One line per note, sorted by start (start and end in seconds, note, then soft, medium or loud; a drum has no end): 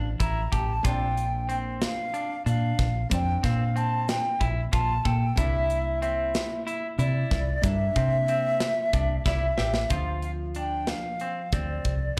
0.00 0.13 A1 medium
0.00 0.81 E3 medium
0.00 0.80 F3 medium
0.00 0.81 C4 medium
0.20 0.45 A1 medium
0.20 0.40 E4 medium
0.20 0.54 A#5 medium
0.20 kick medium
0.20 closed hi-hat medium
0.20 shaker soft
0.52 0.78 A1 medium
0.52 0.72 G4 medium
0.52 0.88 A5 medium
0.52 kick medium
0.52 closed hi-hat medium
0.52 shaker soft
0.83 1.86 A#1 medium
0.83 3.06 A#3 medium
0.83 3.07 C4 medium
0.83 3.07 D4 medium
0.83 1.25 F4 medium
0.83 1.50 G5 loud
0.83 kick loud
0.83 closed hi-hat medium
0.83 shaker medium
1.17 closed hi-hat medium
1.49 1.89 C4 medium
1.49 1.58 G5 medium
1.49 closed hi-hat medium
1.82 2.43 F5 loud
1.82 snare loud
1.82 closed hi-hat medium
1.82 shaker soft
2.14 2.34 D4 medium
2.14 closed hi-hat medium
2.46 2.72 A#2 medium
2.46 2.86 D4 medium
2.46 3.08 F5 medium
2.46 closed hi-hat medium
2.46 shaker soft
2.79 3.04 A#1 medium
2.79 kick medium
2.79 snare soft
2.79 closed hi-hat medium
3.10 3.37 F2 medium
3.10 5.33 A#3 medium
3.10 5.33 C4 medium
3.10 5.34 D4 medium
3.10 3.46 G5 loud
3.10 kick medium
3.10 closed hi-hat medium
3.10 shaker medium
3.43 4.20 A#2 medium
3.43 3.63 C4 medium
3.43 3.78 F5 medium
3.43 kick medium
3.43 snare soft
3.43 closed hi-hat medium
3.76 4.16 C4 medium
3.76 4.10 A5 loud
3.76 closed hi-hat medium
4.08 4.46 G5 medium
4.08 snare loud
4.08 closed hi-hat medium
4.08 shaker soft
4.40 4.66 A#1 medium
4.40 4.60 E4 medium
4.40 kick medium
4.40 closed hi-hat medium
4.73 4.98 A#1 loud
4.73 4.93 F4 medium
4.73 5.08 A5 loud
4.73 kick medium
4.73 closed hi-hat medium
4.73 shaker soft
5.05 5.31 A#2 medium
5.05 5.25 A4 medium
5.05 5.39 G5 medium
5.05 kick medium
5.05 closed hi-hat medium
5.36 6.39 C2 medium
5.36 7.59 A#3 medium
5.36 7.60 D4 medium
5.36 5.78 E4 medium
5.36 7.61 E4 medium
5.36 6.02 E5 loud
5.36 kick medium
5.36 closed hi-hat medium
5.36 shaker medium
5.70 closed hi-hat medium
6.02 6.42 C4 medium
6.02 6.63 E5 medium
6.02 closed hi-hat medium
6.35 snare loud
6.35 closed hi-hat medium
6.35 shaker soft
6.67 6.87 E4 medium
6.67 closed hi-hat medium
6.98 7.24 C3 medium
6.98 7.39 E4 medium
6.98 7.64 D5 medium
6.98 closed hi-hat medium
6.98 shaker soft
7.31 7.56 C2 medium
7.31 kick medium
7.31 snare soft
7.31 closed hi-hat medium
7.62 7.89 G2 medium
7.62 9.85 A#3 medium
7.62 9.86 D4 medium
7.62 9.87 E4 medium
7.62 9.25 E5 loud
7.62 kick medium
7.62 closed hi-hat medium
7.62 shaker medium
7.96 8.72 C3 medium
7.96 8.16 C4 medium
7.96 kick medium
7.96 closed hi-hat medium
8.28 8.69 C4 medium
8.28 closed hi-hat medium
8.60 snare loud
8.60 closed hi-hat medium
8.60 shaker soft
8.93 9.19 C2 medium
8.93 9.13 D4 medium
8.93 kick medium
8.93 closed hi-hat medium
8.93 shaker soft
9.25 9.51 C2 medium
9.25 9.46 E4 medium
9.25 9.56 D5 medium
9.25 9.93 E5 medium
9.25 kick medium
9.25 snare medium
9.25 shaker soft
9.57 9.84 A1 medium
9.57 9.78 G4 medium
9.57 9.88 E5 medium
9.57 snare medium
9.57 shaker soft
9.74 snare medium
9.89 10.92 D2 medium
9.89 12.13 F3 medium
9.89 12.14 C4 soft
9.89 10.31 F4 medium
9.89 12.14 F4 medium
9.89 10.23 F5 medium
9.89 kick medium
9.89 closed hi-hat medium
9.89 shaker soft
10.22 10.31 F5 medium
10.22 closed hi-hat medium
10.55 10.96 D4 medium
10.55 10.91 G5 medium
10.55 closed hi-hat medium
10.87 11.55 F5 medium
10.87 snare medium
10.87 closed hi-hat medium
10.87 shaker soft
11.20 11.41 C4 medium
11.20 closed hi-hat medium
11.52 11.78 D2 medium
11.52 11.94 C4 medium
11.52 12.19 D5 medium
11.52 kick medium
11.52 closed hi-hat medium
11.52 shaker soft
11.84 12.11 C2 medium
11.84 kick medium
11.84 closed hi-hat medium
11.84 shaker soft